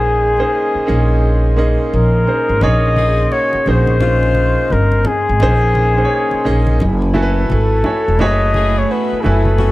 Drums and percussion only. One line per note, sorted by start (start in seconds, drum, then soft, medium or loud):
2.61 muted conga soft
2.61 low conga medium
2.96 high conga medium
3.32 muted conga soft
3.53 muted conga soft
3.66 high conga soft
3.87 high conga medium
4.00 muted conga soft
4.00 low conga medium
4.23 muted conga soft
4.35 high conga medium
4.70 high conga medium
4.92 muted conga soft
5.05 low conga medium
5.40 muted conga soft
5.40 low conga medium
5.62 muted conga soft
5.75 high conga medium
6.31 muted conga soft
6.45 high conga soft
6.67 high conga medium
6.80 low conga medium
7.02 muted conga soft
7.15 high conga medium
7.50 high conga medium
7.84 low conga medium
8.19 muted conga soft
8.19 low conga medium
8.54 high conga medium
9.24 high conga soft
9.45 high conga medium
9.58 low conga medium